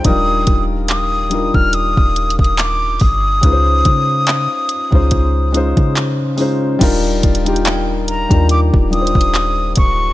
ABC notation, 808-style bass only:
X:1
M:4/4
L:1/16
Q:"Swing 16ths" 1/4=71
K:Eb
V:1 name="808-style bass" clef=bass
E,,,2 E,,,4- E,,, E,,,2 E,,,2 E,,,3 G,,,2 | _D,,2 _D,3 z2 D,,4 D,4- D, | E,,,2 E,,,4- E,,, E,,2 E,,,2 E,,,3 D,,,2 |]